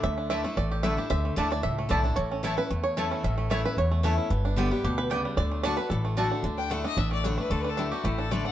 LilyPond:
<<
  \new Staff \with { instrumentName = "Fiddle" } { \time 4/4 \key a \mixolydian \tempo 4 = 225 r1 | r1 | r1 | r1 |
r1 | r1 | r8 g''8 fis''8 ees''8 e''8 d''8 cis''8 b'8 | \tuplet 3/2 { a'8 b'8 a'8 } g'8 fis'8 e'8 a'8 d''8 fis''8 | }
  \new Staff \with { instrumentName = "Mandolin" } { \time 4/4 \key a \mixolydian r4 <a e' d'' a''>8 r4. <a e' d'' a''>8 r8 | r4 <a e' d'' a''>8 r4. <a e' d'' a''>8 r8 | r4 <a e' cis'' a''>8 r4. <a e' cis'' a''>8 r8 | r4 <a e' cis'' a''>8 r4. <a e' cis'' a''>8 r8 |
r4 <b g' d'' g''>8 r4. <b g' d'' g''>8 r8 | r4 <a fis' d'' a''>8 r4. <a fis' d'' a''>8 r8 | r1 | r1 | }
  \new Staff \with { instrumentName = "Five-string banjo" } { \time 4/4 \key a \mixolydian << { e''4 e''4 d''4 e''4 | e''4. d''8 e''4 d''4 | cis''4. b'8 r8 cis''4. | e''4 e''8 b'8 cis''4. r8 |
r2 r8 b'4. | d''4 d''8 b'8 a'4. r8 | r1 | r1 | } \\ { d'8 d'4 a4 g'4 g'8~ | g'8 a8 d'4. a4 d'8 | r8 cis'8 e'4 a4 a8 cis'8~ | cis'8 a4. r8 a8 cis'8 e'8 |
b8 d'8 g8 b8 g'4 d'8 g8 | r8 a4. r8 a8 d'8 d'8 | d'8 d'8 a8 d'8 d'8 a8 d'8 a8 | a8 d'8 d'8 g'8 a8 d'8 a8 d'8 | } >> }
  \new Staff \with { instrumentName = "Steel-string acoustic guitar" } { \time 4/4 \key a \mixolydian << { r4 <d a d' e'>8 <d' e'>8 r4 <d a d' e'>8 <d' e'>8 | r4 <d a d' e'>8 <d' e'>8 r4 <d a d' e'>8 <d' e'>8 | r4 <e a cis' e'>8 <cis' e'>8 r4 <e a cis' e'>4 | r4 <e a cis' e'>8 <cis' e'>8 r4 <e a cis' e'>4 |
r4 <d g b g'>8 <b g'>8 r2 | r4 <d a d' fis'>8 <d' fis'>8 r4 <d a d' fis'>4 | r4 <d a d' e'>8 <d' e'>8 r4 <d a d' e'>8 <d' e'>8 | r4 <d a d' e'>8 e'8 r4 <d a d' e'>8 <d' e'>8 | } \\ { d2 a,2 | d2 a,2 | a,2 e,2 | a,2 e,2 |
g,2 b,4 cis4 | d2 a,2 | d2 a,2 | d2 a,2 | } >> }
  \new Staff \with { instrumentName = "Upright bass" } { \clef bass \time 4/4 \key a \mixolydian d,2 a,,2 | d,4 d,4 cis,4 b,,4 | a,,2 e,2 | a,,2 e,2 |
g,,2 d,2 | d,2 a,,2 | d,2 a,,2 | d,2 a,,2 | }
>>